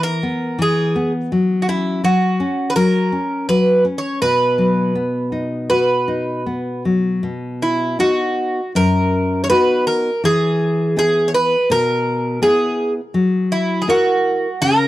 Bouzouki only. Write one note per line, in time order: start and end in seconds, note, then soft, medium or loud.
0.03 0.57 A#4 medium
0.62 1.11 G#4 medium
1.62 1.68 F#4 soft
1.69 2.04 E4 medium
2.04 2.72 F#4 medium
2.70 2.75 B4 medium
2.76 3.48 A#4 medium
3.49 3.83 B4 medium
3.98 4.21 C#5 medium
4.22 5.69 B4 medium
5.70 6.82 B4 medium
7.62 7.99 E4 medium
8.00 8.72 F#4 medium
8.76 9.43 A#4 medium
9.44 9.49 C#5 medium
9.50 9.84 B4 medium
9.87 10.21 A#4 medium
10.25 10.97 G#4 medium
10.99 11.28 G#4 medium
11.28 11.34 C#5 soft
11.34 11.71 B4 medium
11.72 12.42 A#4 medium
12.43 12.92 G#4 medium
13.52 13.82 E4 medium
13.82 13.88 G#4 medium
13.90 14.64 F#4 medium
14.62 14.88 A#4 medium